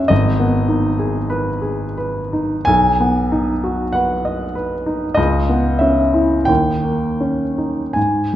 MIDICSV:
0, 0, Header, 1, 2, 480
1, 0, Start_track
1, 0, Key_signature, 5, "minor"
1, 0, Tempo, 1195219
1, 43, Time_signature, 4, 2, 24, 8
1, 523, Tempo, 1382488
1, 1003, Tempo, 1242236
1, 1963, Tempo, 1315789
1, 2443, Tempo, 1485149
1, 3048, End_track
2, 0, Start_track
2, 0, Title_t, "Grand piano"
2, 0, Program_c, 0, 0
2, 0, Control_c, 0, 64, 127
2, 0, Note_on_c, 0, 56, 33
2, 0, Note_on_c, 0, 61, 40
2, 0, Note_on_c, 0, 68, 42
2, 0, Note_on_c, 0, 73, 37
2, 0, Note_on_c, 0, 76, 64
2, 0, Note_on_c, 0, 78, 64
2, 33, Note_on_c, 0, 75, 73
2, 41, Note_on_c, 0, 32, 53
2, 50, Note_off_c, 0, 68, 0
2, 50, Note_off_c, 0, 73, 0
2, 50, Note_off_c, 0, 76, 0
2, 50, Control_c, 0, 64, 0
2, 52, Note_off_c, 0, 61, 0
2, 52, Note_off_c, 0, 78, 0
2, 53, Note_off_c, 0, 56, 0
2, 109, Control_c, 0, 64, 127
2, 159, Note_on_c, 0, 59, 37
2, 275, Note_on_c, 0, 63, 37
2, 350, Note_off_c, 0, 59, 0
2, 397, Note_on_c, 0, 68, 38
2, 471, Note_off_c, 0, 63, 0
2, 521, Note_on_c, 0, 71, 46
2, 588, Note_off_c, 0, 68, 0
2, 632, Note_on_c, 0, 68, 39
2, 707, Note_off_c, 0, 71, 0
2, 757, Note_on_c, 0, 71, 39
2, 832, Note_off_c, 0, 68, 0
2, 880, Note_on_c, 0, 63, 36
2, 955, Note_off_c, 0, 71, 0
2, 989, Note_off_c, 0, 32, 0
2, 991, Note_on_c, 0, 80, 81
2, 998, Note_on_c, 0, 35, 49
2, 999, Note_off_c, 0, 75, 0
2, 1001, Note_off_c, 0, 63, 0
2, 1010, Control_c, 0, 64, 0
2, 1086, Control_c, 0, 64, 127
2, 1126, Note_on_c, 0, 59, 37
2, 1248, Note_on_c, 0, 63, 41
2, 1323, Note_off_c, 0, 59, 0
2, 1371, Note_on_c, 0, 66, 42
2, 1442, Note_off_c, 0, 63, 0
2, 1482, Note_on_c, 0, 78, 56
2, 1485, Note_off_c, 0, 80, 0
2, 1491, Note_on_c, 0, 71, 41
2, 1561, Note_off_c, 0, 66, 0
2, 1607, Note_on_c, 0, 75, 39
2, 1679, Note_off_c, 0, 71, 0
2, 1722, Note_off_c, 0, 78, 0
2, 1725, Note_on_c, 0, 71, 43
2, 1797, Note_off_c, 0, 75, 0
2, 1845, Note_on_c, 0, 63, 36
2, 1916, Note_off_c, 0, 71, 0
2, 1946, Note_off_c, 0, 35, 0
2, 1954, Note_on_c, 0, 75, 73
2, 1963, Note_on_c, 0, 37, 53
2, 1964, Note_off_c, 0, 63, 0
2, 1970, Control_c, 0, 64, 0
2, 2038, Control_c, 0, 64, 127
2, 2081, Note_on_c, 0, 59, 37
2, 2189, Note_on_c, 0, 76, 50
2, 2192, Note_off_c, 0, 75, 0
2, 2197, Note_on_c, 0, 61, 37
2, 2270, Note_off_c, 0, 59, 0
2, 2317, Note_on_c, 0, 64, 37
2, 2393, Note_off_c, 0, 61, 0
2, 2429, Note_off_c, 0, 37, 0
2, 2431, Note_on_c, 0, 79, 65
2, 2439, Note_on_c, 0, 39, 41
2, 2440, Note_off_c, 0, 76, 0
2, 2443, Note_off_c, 0, 64, 0
2, 2451, Control_c, 0, 64, 0
2, 2508, Control_c, 0, 64, 127
2, 2556, Note_on_c, 0, 58, 34
2, 2676, Note_on_c, 0, 61, 33
2, 2747, Note_off_c, 0, 58, 0
2, 2797, Note_on_c, 0, 63, 29
2, 2870, Note_off_c, 0, 61, 0
2, 2905, Note_off_c, 0, 39, 0
2, 2911, Note_on_c, 0, 80, 50
2, 2915, Note_off_c, 0, 79, 0
2, 2919, Note_on_c, 0, 44, 35
2, 2920, Note_off_c, 0, 63, 0
2, 2926, Control_c, 0, 64, 0
2, 3003, Control_c, 0, 64, 127
2, 3048, Note_off_c, 0, 44, 0
2, 3048, Note_off_c, 0, 80, 0
2, 3048, End_track
0, 0, End_of_file